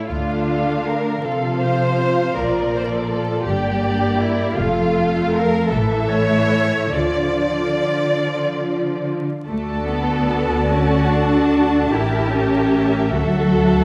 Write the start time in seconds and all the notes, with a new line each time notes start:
0.08 D2 D3 A3 D4 F4 F5
0.86 A#4
1.23 C3 F3 F4 A4 F5
1.60 C5
2.37 A#1 A#2 F3 F4 A#4 D5
2.76 C5
2.84 A#4
2.92 A4
3.01 A#4
3.08 A4
3.44 G1 G2 A#3 G4 D5
4.18 E4
4.57 F1 F2 A3 F4 A4 F5
5.33 A#4
5.71 A1 A2 E3 A4 E5
6.12 C#5
6.93 D2 D3 F3 F4 D5
9.47 D2 A3 F#4 A4 D5 A5
9.88 B3
10.71 C#4 F#4
11.11 D4
11.91 A1 E4 G4 A#4 E5
12.31 C#4
13.12 D2 F#3 F#4 A4 F#5